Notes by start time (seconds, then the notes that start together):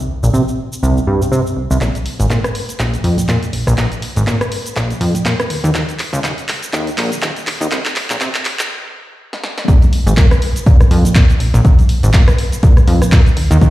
0.23 A#1, shaker
0.34 C3, shaker
0.48 shaker
0.73 shaker
0.83 C2, shaker
0.97 shaker
1.07 G2
1.21 C3, shaker
1.32 C3, shaker
1.47 shaker
1.57 C2
1.71 C2, shaker
1.81 A#1, kick, clap, closed hi-hat, shaker
1.95 closed hi-hat, shaker
2.06 open hi-hat
2.20 G#1, closed hi-hat, shaker
2.30 A#2, kick, clap, closed hi-hat, shaker
2.44 cross-stick, closed hi-hat, shaker
2.55 open hi-hat
2.69 closed hi-hat, shaker
2.79 A#1, kick, clap, closed hi-hat, shaker
2.94 closed hi-hat, shaker
3.04 F2, open hi-hat
3.18 A#2, closed hi-hat, shaker
3.29 A#2, kick, clap, closed hi-hat, shaker
3.43 closed hi-hat, shaker
3.53 A#1, open hi-hat
3.67 A#1, cross-stick, closed hi-hat, shaker
3.78 A#1, kick, clap, closed hi-hat, shaker
3.92 closed hi-hat, shaker
4.02 open hi-hat
4.16 G#1, closed hi-hat, shaker
4.27 A#2, kick, clap, closed hi-hat, shaker
4.41 cross-stick, closed hi-hat, shaker
4.52 open hi-hat
4.66 closed hi-hat, shaker
4.76 A#1, kick, clap, closed hi-hat, shaker
4.90 closed hi-hat, shaker
5.01 F2, open hi-hat
5.15 A#2, closed hi-hat, shaker
5.25 A#2, kick, clap, closed hi-hat, shaker
5.40 cross-stick, closed hi-hat, shaker
5.50 D#2, open hi-hat
5.64 D#2, closed hi-hat, shaker
5.75 D#2, kick, clap, closed hi-hat, shaker
5.89 closed hi-hat, shaker
5.99 clap, open hi-hat
6.13 C#2, closed hi-hat, shaker
6.24 D#1, kick, clap, closed hi-hat, shaker
6.38 closed hi-hat, shaker
6.49 clap, open hi-hat
6.63 closed hi-hat, shaker
6.73 D#2, kick, clap, closed hi-hat, shaker
6.87 closed hi-hat, shaker
6.97 A#1, clap, open hi-hat
7.12 D#1, closed hi-hat, shaker
7.22 D#1, kick, clap, closed hi-hat, shaker
7.36 closed hi-hat, shaker
7.47 D#2, clap, open hi-hat
7.61 D#2, closed hi-hat, shaker
7.71 C2, kick, clap, closed hi-hat, shaker
7.85 clap, closed hi-hat, shaker
7.96 clap, open hi-hat
8.10 A#1, clap, closed hi-hat, shaker
8.21 C3, kick, clap, closed hi-hat, shaker
8.35 clap, closed hi-hat, shaker
8.45 clap, open hi-hat
8.59 clap, closed hi-hat, shaker
9.33 snare
9.44 snare
9.58 snare
9.68 A#1, kick, closed hi-hat, shaker
9.82 closed hi-hat, shaker
9.93 open hi-hat
10.07 G#1, closed hi-hat, shaker
10.17 A#2, kick, clap, closed hi-hat, shaker
10.31 cross-stick, closed hi-hat, shaker
10.42 open hi-hat
10.56 closed hi-hat, shaker
10.66 A#1, kick, closed hi-hat, shaker
10.81 cross-stick, closed hi-hat, shaker
10.91 F2, open hi-hat
11.05 A#2, closed hi-hat, shaker
11.15 A#2, kick, clap, closed hi-hat, shaker
11.30 closed hi-hat, shaker
11.40 A#1, open hi-hat
11.54 A#1, closed hi-hat, shaker
11.65 A#1, kick, closed hi-hat, shaker
11.79 closed hi-hat, shaker
11.89 open hi-hat
12.03 G#1, closed hi-hat, shaker
12.13 A#2, kick, clap, closed hi-hat, shaker
12.28 cross-stick, closed hi-hat, shaker
12.38 open hi-hat
12.52 closed hi-hat, shaker
12.63 A#1, kick, closed hi-hat, shaker
12.77 cross-stick, closed hi-hat, shaker
12.88 F2, open hi-hat
13.02 A#2, cross-stick, closed hi-hat, shaker
13.12 A#2, kick, clap, closed hi-hat, shaker
13.26 closed hi-hat, shaker
13.37 D#2, open hi-hat
13.51 D#2, closed hi-hat, shaker
13.61 D#2, kick, closed hi-hat, shaker